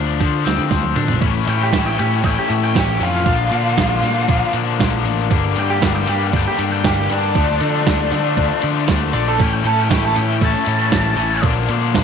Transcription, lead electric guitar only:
1.50 G5
1.63 G4
1.87 G5
1.99 G4
2.26 G5
2.39 G4
2.64 G5
2.79 G4
3.03 F4
5.59 G5
5.70 G4
5.95 G5
6.10 G4
6.36 G5
6.47 G4
6.72 G5
6.86 G4
7.12 D4
9.14 D5
9.28 A4
9.41 G5
9.54 G5
9.67 A4
9.82 G5
9.93 G5
10.05 A4
10.16 G5
10.45 A5

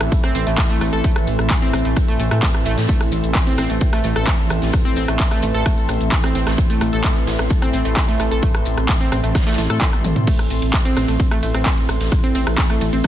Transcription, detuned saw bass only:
0.01 A1
0.35 A1
0.47 A1
0.81 A1
0.93 A1
1.27 A1
1.39 A1
1.74 A1
1.85 A1
2.20 A1
2.31 A2
2.66 A1
2.78 A2
3.12 A1
3.24 A1
3.58 A1
3.70 A1
4.04 A1
4.16 A1
4.50 A1
4.62 A1
4.97 A1
5.08 A1
5.43 A1
5.54 A1
5.89 A1
6.01 A1
6.35 A1
6.47 A1
6.81 A1
6.93 A1
7.27 A1
7.39 A1
7.74 A1
7.85 A1
8.20 A1
8.31 A1
8.66 A1
8.78 A1
9.12 A1
9.24 A1
9.58 A1
9.70 A2
10.04 A1
10.16 A2
10.50 A1
10.62 A1
10.97 A1
11.08 A1
11.43 A1
11.54 A1
11.89 A1
12.01 A1
12.35 A1
12.47 A1
12.81 A1
12.93 A1

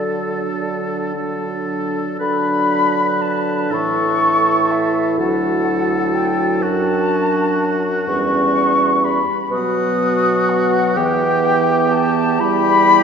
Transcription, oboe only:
Already playing: A4
1.15 A4
2.20 B4
3.71 A4
5.19 A4
6.63 F#4
9.51 F#4
10.97 G4
12.40 G4

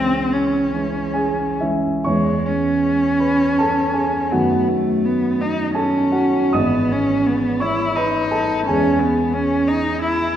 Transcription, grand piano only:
Already playing: C#2 E3 G#3 C#4
0.74 E3 G#3 C#4
1.14 G#4 G#5
1.60 E3 G#3 C#4 E4 E5
2.04 E2 E3 G#3 B3 C#5 C#6
3.20 B4 B5
3.58 A4 A5
3.94 G#4 G#5
4.32 F#2 D#3 A3 B3 F#4 F#5
5.75 A4 A5
6.12 F#4 F#5
6.53 G#1 E3 G#3 B3 D#5 D#6
7.60 C#5 C#6
7.97 B4 B5
8.31 A4 A5
8.67 E2 E3 G#3 B3 G#4 G#5

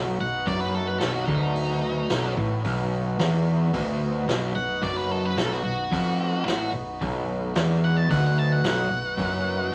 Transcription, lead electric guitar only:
0.21 F#5
0.47 D5
0.60 B4
0.75 A4
0.87 B4
0.99 A4
1.13 F#4
1.26 D#4
4.55 F#5
4.83 D5
4.97 B4
5.11 A4
5.25 B4
5.38 A4
5.52 F#4
5.64 F#4
7.84 F#5
7.97 A5
8.11 F#5
8.27 F#5
8.38 A5
8.52 F#5
8.66 F#5

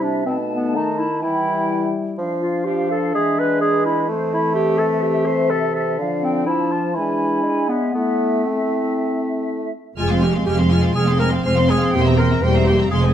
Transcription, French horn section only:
Already playing: G3 E4
0.27 A3 D#4
1.23 G3 E4
2.20 F3 D4
3.14 E3
4.09 C4
5.99 F3 D4
6.96 G#3 D4
7.96 A3 E4
8.46 A3 E4
9.99 G#3
10.97 C4
11.46 C4
12.43 G3
12.91 G#3

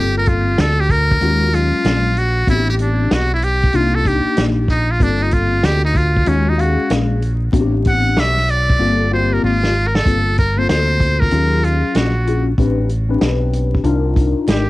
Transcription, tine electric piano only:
Already playing: A#3 C4 F4 A4
1.20 G#3 C#4 F4 F#4
1.52 F#3 G#3 C#4 F4
2.47 B3 C4 D4 F#4
2.55 G4
3.73 A#3 D4 D#4 F4
4.04 A#3 D4 D#4 G4
4.99 A#3 C4 F4 A4
6.25 G#3 C#4 F4 F#4
6.57 G#3 C#4 F#4 F5
6.65 G#4
7.52 B3 C4 D4 F#4
7.61 G4
8.79 A#3 C4 F4 A4
9.10 A#3 C4 F4 F#4
9.19 G4
10.05 A#3 C4 F4 A4
10.57 A#3 C4 F4 A4
11.32 F#3 C#4 F4 G#4
12.26 C#4 F4 F#4 G#4
12.58 C4 D4 G4 B4
13.09 C4 D4 G4 B4
13.84 D4 D#4 F4 A#4

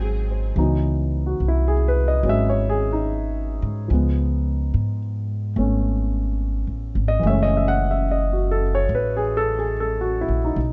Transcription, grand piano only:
Already playing: F#3 G#3 C4 D#4 F#4 C5
0.02 G#4
0.31 C5
0.57 E3 F#3 B3 D#4
1.26 F#4
1.48 E4
1.68 G#4
1.88 B4
2.08 D#5
2.23 F#3 G#3 C#4
2.29 E5
2.50 C#5
2.69 G#4
2.93 D#4
3.88 F3 G#3
3.93 B3
5.56 A3 B3 C#4
7.08 D#5
7.19 E3 G#3
7.26 A3 C#4 E5
7.43 D#5
7.57 E5
7.68 F#5
7.91 E5
8.11 D#5
8.33 F#4
8.51 A4
8.75 C#5
8.95 B4
9.17 G#4
9.37 A4
9.59 G#4
9.80 A4
10.01 F#4
10.21 E4
10.45 D#4

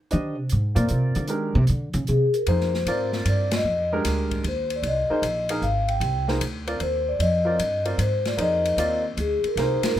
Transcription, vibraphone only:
2.08 G#4
2.34 A#4
2.48 C5
3.29 D5
3.56 D#5
4.48 C5
4.76 D5
4.87 D#5
5.63 F5
5.88 G5
6.80 A#4 C5
7.09 D5
7.21 D#5
8.01 C5
8.28 D5
8.41 D#5
9.20 G#4
9.48 A#4
9.61 C5
9.87 A#4

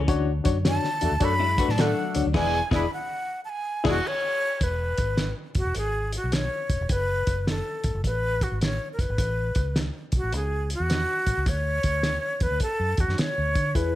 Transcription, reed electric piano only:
0.08 D3 D4 F#4 C#5
0.44 D4 F#4 C#5
0.65 D4 F#4 C#5
1.01 D4 F#4 E5
1.20 D4 F#4 C#5
1.59 D4 F#4 B4
1.78 D4 F#4 A4
2.16 D4 F#4 C#5
2.34 E3 E4 G#4 D5
2.72 E4 G#4 D5
3.84 E4 G#4 D5
13.75 E3 E4 G#4 B4

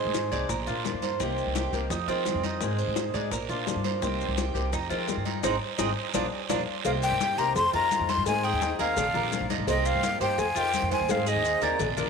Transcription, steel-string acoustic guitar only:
Already playing: D#3 G#3 C4 D#4 G#4
0.31 G#3 C4 D#4 G#4
0.50 muted steel-string acoustic guitar stroke
0.67 A#3 D4 F4
0.85 F3 A#3 D4 F4
1.20 C3 D#3 A#3 C4 G4
1.72 D#3 A#3 C4 G4
1.90 muted steel-string acoustic guitar stroke
2.08 D#3 G#3 C4 F4
2.26 D#3 G#3 C4 F4
2.61 D#3 G#3 C4 D#4 G#4
3.14 G#3 C4 D#4 G#4
3.32 muted steel-string acoustic guitar stroke
3.49 A#3 D4 F4
3.66 F3 A#3 D4 F4
4.01 C3 D#3 A#3 C4 G4
4.54 D#3 A#3 C4 G4
4.72 muted steel-string acoustic guitar stroke
4.90 D#3 G#3 C4 F4
5.07 D#3 G#3 C4 F4
5.43 G#3 C4 D#4
5.79 G#3 C4 D#4
6.14 F3 A#3 D4
6.50 F3 A#3 D4
6.84 C3 D#3 A#3 C4 G4
7.20 D#3 A#3 C4 G4
7.38 D#3 A#3 C4 G4
7.56 muted steel-string acoustic guitar stroke
7.73 D#3 G#3 C4 F4
7.91 D#3 G#3 F4
8.26 D#3 G#3 C4 D#4 G#4
8.62 G#3 C4 D#4 G#4
8.79 G#3 C4 D#4 G#4
8.96 muted steel-string acoustic guitar stroke
9.14 A#3 D4 F4
9.32 F3 A#3 D4 F4
9.67 C3 D#3 A#3 C4 G4
10.02 D#3 A#3 C4 G4
10.21 D#3 A#3 C4 G4
10.38 muted steel-string acoustic guitar stroke
10.55 D#3 G#3 C4 F4
10.73 D#3 G#3 C4 F4
11.09 D#3 G#3 C4 D#4 G#4
11.43 G#3 C4 D#4 G#4
11.62 G#3 C4 D#4 G#4
11.80 muted steel-string acoustic guitar stroke
11.97 A#3 D4 F4

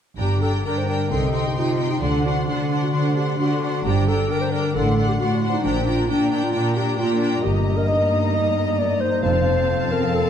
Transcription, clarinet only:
0.19 G4
0.42 A4
0.65 A#4
0.78 C5
0.89 A#4
1.11 A4
1.47 G4
1.58 F4
1.92 D#4
2.03 D4
2.26 F#4
2.48 D4
2.83 F#4
3.16 G4
3.40 F#4
3.86 G4
4.08 A4
4.32 A#4
4.41 C5
4.51 A#4
4.75 A4
5.08 G4
5.19 F#4
5.53 D#4
5.65 D4
5.88 F4
6.10 D4
6.43 F4
6.77 G4
6.99 F4
7.44 G4
7.77 A#4
7.88 D#5
8.34 D#5
8.78 D5
9.01 C5
9.23 C5
9.92 A#4
10.15 A4

